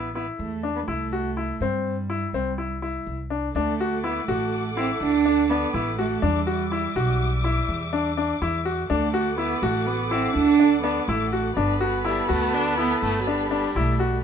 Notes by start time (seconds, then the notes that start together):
Already playing: A1 B3
0.15 B3 E4
0.39 E2 A3
0.63 D4
0.76 B3
0.88 C2 A3 E4
1.13 F#4
1.37 E4
1.60 G2 G3 C4
2.10 E4
2.33 C2 C4
2.58 E4
2.82 E4
3.07 C2
3.30 D4
3.54 D2 A3 D4 A4 F#5 D6
3.80 F#4
4.03 B3 E4
4.28 A1 A3 F#4
4.76 C4 E4
5.01 D2 D4
5.25 D4
5.50 B3 D4
5.74 A1 E4
5.99 A3 F#4
6.22 E2 G3 D4 E5 D6
6.47 F#4
6.72 E4
6.96 B1 F#4
7.44 E4
7.68 E2
7.93 D4
8.17 D4
8.41 E2 E4
8.65 F#4
8.88 D2 A3 D4 A4 F#5 D6
9.14 F#4
9.38 B3 E4
9.62 A1 A3 F#4
9.87 B3
10.11 C4 E4
10.35 D2 D4
10.60 D4
10.83 B3 D4
11.08 A1 A3 E4
11.33 F#4
11.56 G1 B3 D4 A4 A5 B5
11.81 F#4
12.05 G3 E4
12.29 D2 A3 F#4
12.54 D4
12.78 B3 E4
13.02 G1 A3
13.20 F#3
13.27 G3 D4
13.51 D4
13.76 B1 A3 E4
14.00 F#4